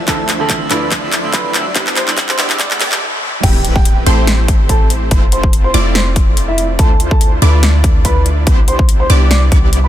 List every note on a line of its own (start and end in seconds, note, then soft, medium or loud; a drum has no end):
0.00 1.72 F3 medium
0.00 1.72 E5 medium
0.00 riser medium
0.07 0.69 D2 loud
0.07 0.17 D3 medium
0.07 0.18 F3 medium
0.07 0.68 A3 medium
0.07 0.18 A3 medium
0.07 0.18 C4 medium
0.07 0.68 D4 medium
0.07 0.68 E4 medium
0.07 0.18 E4 medium
0.07 0.68 F4 medium
0.07 0.24 A4 medium
0.07 0.68 C5 medium
0.07 2.99 D5 medium
0.07 0.24 A5 loud
0.07 1.74 C6 medium
0.07 kick loud
0.07 clap medium
0.07 closed hi-hat medium
0.29 clap medium
0.29 closed hi-hat medium
0.39 0.68 D3 medium
0.39 0.68 F3 medium
0.39 0.68 A3 medium
0.39 0.69 C4 medium
0.39 0.69 E4 medium
0.39 0.56 A4 medium
0.39 0.56 A5 medium
0.50 kick medium
0.50 clap medium
0.50 closed hi-hat medium
0.70 1.74 D2 medium
0.70 1.00 D3 medium
0.70 1.00 F3 medium
0.70 1.73 A3 medium
0.70 1.00 A3 medium
0.70 1.00 C4 medium
0.70 1.73 D4 medium
0.70 1.73 E4 medium
0.70 1.01 E4 loud
0.70 1.73 F4 medium
0.70 0.87 B4 medium
0.70 1.73 D5 medium
0.70 0.87 B5 medium
0.70 clap medium
0.70 closed hi-hat medium
0.91 kick loud
0.91 clap medium
0.91 closed hi-hat medium
1.02 1.11 D3 medium
1.02 1.11 F3 medium
1.02 1.12 A3 medium
1.02 1.12 C4 medium
1.02 1.12 E4 loud
1.12 clap medium
1.12 closed hi-hat medium
1.23 1.52 D3 medium
1.23 1.52 F3 medium
1.23 1.52 A3 medium
1.23 1.52 C4 medium
1.23 1.53 E4 medium
1.33 1.50 B4 medium
1.33 1.50 B5 medium
1.33 kick loud
1.33 clap medium
1.33 closed hi-hat medium
1.53 1.64 D3 medium
1.53 1.64 F3 medium
1.53 1.65 A3 medium
1.53 1.65 C4 medium
1.53 1.65 E4 medium
1.53 clap medium
1.53 closed hi-hat medium
1.74 2.37 C2 medium
1.74 1.85 D3 medium
1.74 1.85 G3 medium
1.74 1.86 B3 medium
1.74 2.36 B3 medium
1.74 1.86 C4 medium
1.74 2.36 D4 medium
1.74 3.00 E4 medium
1.74 2.36 E4 medium
1.74 1.86 E4 medium
1.74 2.36 G4 medium
1.74 2.36 C5 medium
1.74 3.00 B5 medium
1.74 kick loud
1.74 clap medium
1.74 closed hi-hat medium
1.87 clap medium
1.96 2.13 C5 medium
1.96 2.13 C6 medium
1.96 clap medium
1.96 closed hi-hat medium
2.07 2.36 D3 medium
2.07 2.36 G3 medium
2.07 2.36 B3 medium
2.07 2.36 C4 medium
2.07 2.37 E4 loud
2.07 clap medium
2.17 kick loud
2.17 clap loud
2.17 closed hi-hat medium
2.29 2.45 C5 medium
2.29 2.45 C6 medium
2.29 clap medium
2.38 2.79 C2 medium
2.38 2.68 D3 medium
2.38 2.68 G3 medium
2.38 2.78 B3 medium
2.38 2.68 B3 medium
2.38 2.68 C4 medium
2.38 2.79 D4 medium
2.38 2.78 E4 medium
2.38 2.69 E4 loud
2.38 2.78 G4 medium
2.38 2.78 D5 medium
2.38 clap loud
2.38 closed hi-hat medium
2.50 clap medium
2.59 2.71 D5 medium
2.59 2.71 D6 medium
2.59 kick loud
2.59 clap loud
2.59 closed hi-hat medium
2.70 2.79 D3 loud
2.70 2.79 G3 medium
2.70 2.80 B3 medium
2.70 2.80 C4 medium
2.70 2.80 E4 loud
2.70 clap medium
2.80 3.01 C2 loud
2.80 3.01 B3 medium
2.80 3.01 D4 medium
2.80 3.01 E4 medium
2.80 3.01 G4 medium
2.80 3.01 D5 medium
2.80 clap loud
2.80 closed hi-hat medium
2.92 clap medium
3.43 4.04 A1 medium
3.43 4.04 A3 medium
3.43 4.04 C4 medium
3.43 4.04 E4 medium
3.43 3.60 G4 medium
3.43 4.04 G4 medium
3.43 4.04 B4 medium
3.43 3.60 G5 loud
3.43 4.04 B5 medium
3.43 kick loud
3.43 closed hi-hat medium
3.43 crash loud
3.43 impact medium
3.65 closed hi-hat medium
3.76 3.91 G4 medium
3.76 3.91 G5 medium
3.76 kick loud
3.85 closed hi-hat medium
4.06 5.09 A1 medium
4.06 5.09 A3 medium
4.06 5.09 C4 medium
4.06 5.09 E4 medium
4.06 5.09 G4 medium
4.06 4.23 A4 medium
4.06 5.09 C5 loud
4.06 4.23 A5 medium
4.06 5.09 C6 loud
4.06 closed hi-hat medium
4.27 snare loud
4.27 closed hi-hat medium
4.48 kick loud
4.48 closed hi-hat medium
4.69 4.86 A4 medium
4.69 4.86 A5 medium
4.69 kick medium
4.69 closed hi-hat medium
4.90 closed hi-hat medium
5.11 5.72 F1 loud
5.11 5.72 A3 medium
5.11 5.72 C4 medium
5.11 5.72 E4 medium
5.11 5.72 F4 medium
5.11 5.72 C5 medium
5.11 5.72 C6 medium
5.11 kick loud
5.11 closed hi-hat medium
5.32 5.49 C5 medium
5.32 5.49 C6 medium
5.32 closed hi-hat medium
5.43 kick loud
5.53 closed hi-hat medium
5.64 5.80 C5 medium
5.64 5.80 C6 medium
5.74 6.80 F1 loud
5.74 6.77 A3 medium
5.74 6.77 C4 medium
5.74 6.77 E4 medium
5.74 6.77 F4 medium
5.74 6.77 D5 medium
5.74 6.77 D6 loud
5.74 closed hi-hat medium
5.95 6.06 C5 medium
5.95 6.06 C6 medium
5.95 snare loud
5.95 closed hi-hat medium
6.16 kick loud
6.16 closed hi-hat medium
6.37 closed hi-hat medium
6.48 6.64 E4 medium
6.48 6.64 E5 loud
6.58 closed hi-hat medium
6.79 7.40 D2 loud
6.79 7.40 A3 medium
6.79 7.40 D4 medium
6.79 7.40 E4 medium
6.79 7.40 F4 medium
6.79 6.95 A4 medium
6.79 7.40 C5 medium
6.79 6.95 A5 loud
6.79 7.40 C6 medium
6.79 kick loud
6.79 closed hi-hat medium
7.00 closed hi-hat medium
7.11 7.27 A4 medium
7.11 7.27 A5 medium
7.11 kick loud
7.21 closed hi-hat medium
7.42 8.48 D2 medium
7.42 8.45 A3 medium
7.42 8.45 D4 medium
7.42 8.45 E4 medium
7.42 8.45 F4 medium
7.42 7.58 B4 medium
7.42 8.45 D5 loud
7.42 7.58 B5 medium
7.42 8.45 D6 loud
7.42 closed hi-hat medium
7.63 snare loud
7.63 closed hi-hat medium
7.84 kick loud
7.84 closed hi-hat medium
8.05 8.21 B4 medium
8.05 8.21 B5 medium
8.05 kick medium
8.05 closed hi-hat medium
8.26 closed hi-hat medium
8.47 9.08 C2 loud
8.47 9.08 B3 medium
8.47 9.08 D4 medium
8.47 9.08 E4 medium
8.47 9.08 G4 medium
8.47 9.08 C5 medium
8.47 9.07 C6 medium
8.47 kick loud
8.47 closed hi-hat medium
8.68 8.84 C5 medium
8.68 8.84 C6 medium
8.68 closed hi-hat medium
8.79 kick loud
8.89 closed hi-hat medium
9.00 9.16 C5 medium
9.00 9.16 C6 medium
9.10 9.50 C2 medium
9.10 9.50 B3 medium
9.10 9.50 D4 medium
9.10 9.50 E4 medium
9.10 9.50 G4 medium
9.10 9.50 D5 medium
9.10 9.50 D6 loud
9.10 closed hi-hat medium
9.31 9.42 D5 medium
9.31 9.42 D6 medium
9.31 snare loud
9.31 closed hi-hat medium
9.52 9.88 C2 loud
9.52 9.88 B3 medium
9.52 9.88 D4 medium
9.52 9.88 E4 medium
9.52 9.88 G4 medium
9.52 9.88 D5 loud
9.52 9.88 D6 loud
9.52 kick loud
9.52 closed hi-hat medium
9.73 closed hi-hat medium
9.84 9.88 B4 medium
9.84 9.88 B5 loud